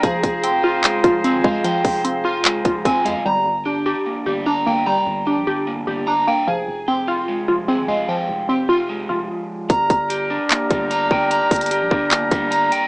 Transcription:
<<
  \new Staff \with { instrumentName = "Woodwind section" } { \time 4/4 \key g \phrygian \tempo 4 = 149 <f' aes' c'' bes''>1~ | <f' aes' c'' bes''>1 | r1 | r1 |
r1 | r1 | <d' g' bes' bes''>1~ | <d' g' bes' bes''>1 | }
  \new Staff \with { instrumentName = "Clean electric guitar" } { \time 4/4 \key g \phrygian aes'4 g''8 f'8 aes8 f8 aes'8 f''8 | g''4. f'8 aes8 f8 aes''8 f''8 | bes''4 g'8 d'8 bes8 g8 bes''8 g''8 | bes''4 g'8 d'8 bes8 g8 bes''8 g''8 |
aes'4 g''8 f'8 aes8 f8 aes'8 f''8 | g''4 g'8 f'8 aes8 f4. | bes''4 g'8 d'8 bes8 g8 bes''8 g''8 | bes''4 g'8 d'8 bes8 g8 bes''8 g''8 | }
  \new Staff \with { instrumentName = "Synth pluck" } { \time 4/4 \key g \phrygian f4 c'8 f'4 f'8 c'8 aes8 | f4 c'8 f'4 f'8 c'8 aes8 | g4 d'8 g'4 g'8 d'8 bes8 | g4 d'8 g'4 g'8 d'8 bes8 |
f4 c'8 f'4 f'8 c'8 aes8 | f4 c'8 f'4 f'4. | r1 | r1 | }
  \new Staff \with { instrumentName = "808-style bass" } { \clef bass \time 4/4 \key g \phrygian f,,8 f,,2 f,,8. aes,,16 f,,8 | r8 f,,2 f,,8 f,,8 f,16 f,,16 | g,,8 g,,4~ g,,16 r8. g,,4 g,,8~ | g,,16 f,,16 g,,8. bes,,16 g,,4 g,,4 r8 |
f,,8 f,,2 f,,8. aes,,16 f,,8 | r8 f,,4 f,,4 f,,8 r4 | g,,8 g,,4~ g,,16 r8. g,,4 g,,8~ | g,,16 f,,16 g,,8. bes,,16 g,,4 g,,4 r8 | }
  \new DrumStaff \with { instrumentName = "Drums" } \drummode { \time 4/4 <hh bd>8 <hh bd>8 hh4 <hc hh>8 <hh bd>8 hh8 bd8 | hh8 <hho bd>8 hh4 <hc hh>8 <hh bd>8 <hh bd>8 hh8 | r4 r4 r4 r4 | r4 r4 r4 r4 |
r4 r4 r4 r4 | r4 r4 r4 r4 | <hh bd>8 <hh bd>8 hh4 <hc hh>8 <hh bd>8 hh8 bd8 | hh8 <hh hho bd>32 hh32 hh32 hh32 hh8 bd8 <hc hh>8 <hh bd>8 hh8 hh8 | }
>>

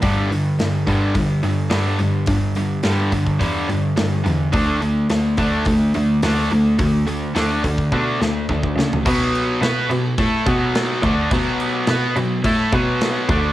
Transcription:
<<
  \new Staff \with { instrumentName = "Distorted electric guitar" } { \clef bass \time 4/4 \key b \minor \tempo 4 = 106 <g, d g>8 <g, d>8 <g, d>8 <g, d g>8 <g, d>8 <g, d>8 <g, d g>8 <g, d>8 | <g, d>8 <g, d>8 <g, d g>8 <g, d>8 <g, d g>8 <g, d>8 <g, d>8 <g, d>8 | <d a d'>8 <d a>8 <d a>8 <d a d'>8 <d a>8 <d a>8 <d a d'>8 <d a>8 | <d a>8 <d a>8 <d a d'>8 <d a>8 <d a d'>8 <d a>8 <d a>8 <d a>8 |
<b, fis b>4 <b fis' b'>8 <b, fis>8 <a e' a'>8 <b, fis b>4 <d a d'>8 | <b, fis b>4 <b fis' b'>8 <b, fis>8 <a e' a'>8 <b, fis b>4 <d a d'>8 | }
  \new Staff \with { instrumentName = "Cello" } { \clef bass \time 4/4 \key b \minor g,4 g,8 g,8 g,8 g,8 g,8 g,8 | g,4 g,8 g,8 e,8 g,8 g,8 e,8 | d,4 d,8 d,8 d,8 d,8 d,8 d,8 | d,4 d,8 d,8 b,8 d,8 d,8 cis8 |
b,4 b,8 b,8 a,8 b,4 d,8 | b,4 b,8 b,8 a,8 b,4 d,8 | }
  \new DrumStaff \with { instrumentName = "Drums" } \drummode { \time 4/4 <hho bd>8 hho8 <hho sn>8 <hho bd>8 <hho bd>8 hho8 <hho sn>8 hho8 | <hho bd>8 hho8 <hho sn>8 <hho bd>16 bd16 <hho bd>8 hho8 <hho sn>8 hho8 | <hho bd>8 hho8 <hho sn>8 <hho bd>8 <hho bd>8 hho8 <hho sn>8 hho8 | <hho bd>8 hho8 <hho sn>8 <hho bd>16 bd16 bd8 sn8 bd16 bd16 sn16 tomfh16 |
<cymc bd>8 cymc8 <cymc sn>8 cymc8 <cymc bd>8 <cymc bd>8 <cymc sn>8 <cymc bd>8 | <cymc bd>8 cymc8 <cymc sn>8 cymc8 <cymc bd>8 <cymc bd>8 <cymc sn>8 <cymc bd>8 | }
>>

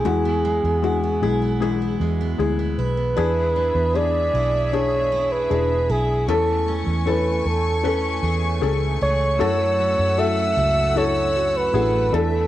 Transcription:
<<
  \new Staff \with { instrumentName = "String section" } { \time 4/4 \key e \mixolydian \tempo 4 = 77 << { r1 | e''1 | <gis'' cis'''>1 | <fis'' e'''>2.~ <fis'' e'''>8 e''8 | } \\ { r1 | gis'1 | a1~ | a1 | } >> }
  \new Staff \with { instrumentName = "Flugelhorn" } { \time 4/4 \key e \mixolydian gis'2. r8 b'8~ | b'4 d''4 cis''8. b'8. gis'8 | a'8. r16 b'8 a'4 r4 cis''8~ | cis''4 e''4 cis''8. b'8. a'8 | }
  \new Staff \with { instrumentName = "Felt piano" } { \time 4/4 \key e \mixolydian <gis e' fis'>4 <gis e' fis'>8 <gis e' gis'>8 <gis e' gis'>4 <gis e' gis'>4 | <d' e' gis'>4 <d' e' gis'>4 <d' e' gis'>4 <d' e' gis'>4 | <cis' e' a'>4 <cis' e' a'>4 <cis' a' b'>4 <cis' gis' a'>4 | <e' fis' a'>4 <e' fis' a'>4 <e' fis' a'>4 <e' fis' gis'>8 <d' e' a'>8 | }
  \new Staff \with { instrumentName = "Felt piano" } { \clef bass \time 4/4 \key e \mixolydian e4. r2 r8 | e4. r2 r8 | e4. r2 r8 | r2. r8 e8 | }
  \new Staff \with { instrumentName = "Steel-string acoustic guitar" } { \time 4/4 \key e \mixolydian <e, e'>16 b16 gis16 b16 e'16 b16 e'16 b16 <e, e'>16 b16 gis16 b16 e'16 b16 e'16 b16 | <e, e'>8 d'8 gis8 e'8 d'8 e'8 gis8 e'8 | e8 cis'8 a4 cis'8 gis'8 a8 gis'8 | <fis, fis'>8 cis'8 a8 fis'8 cis'8 fis'8 a8 e,8 | }
  \new Staff \with { instrumentName = "Fingered electric bass" } { \clef bass \time 4/4 \key e \mixolydian e,8. e,8. b,,4 e,8 d,8 b,,8 | e,8. e,8. b,,4. e,,8 b,,8 | e,8. e,8. e,4 e,8 cis,8 cis,8 | fis,8. fis,8. cis,4. a,,8 e,8 | }
>>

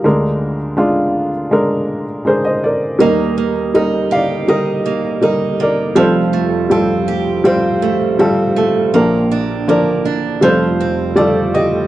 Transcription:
<<
  \new Staff \with { instrumentName = "Upright piano" } { \time 4/4 \key bes \major \tempo 4 = 81 << { f'4. r4. <aes' c''>16 <c'' ees''>16 <bes' d''>8 | ees''4. <d'' f''>8 ees''4. <bes' d''>8 | c''2. r8 a'8 | bes'4 d''4 c''4 d''8 <g' ees''>8 | } \\ { <aes d' bes'>8 r8 <aes d' f'>8 r8 <aes d' bes'>8 r8 <aes d' bes'>8 r8 | <g ees' bes'>8 r8 <g ees' bes'>8 r8 <g ees' bes'>8 r8 <g ees' bes'>8 r8 | <g f' a'>8 r8 <g f' a'>8 r8 <g f' c''>8 r8 <g f' a'>8 r8 | <f d'>8 r8 <f d' bes'>8 r8 <g f' a'>8 r8 <g f' a'>8 r8 | } >> }
  \new Staff \with { instrumentName = "Upright piano" } { \clef bass \time 4/4 \key bes \major <d, d>1 | <ees, ees>1 | <f,, f,>1 | <bes,, bes,>2 <f,, f,>2 | }
  \new Staff \with { instrumentName = "Steel-string acoustic guitar" } { \time 4/4 \key bes \major r1 | bes8 bes8 ees'8 g'8 ees'8 bes8 ees'8 bes8 | f8 a8 c'8 g'8 c'8 a8 c'8 a8 | bes8 d'8 bes8 d'8 f8 c'8 a8 c'8 | }
>>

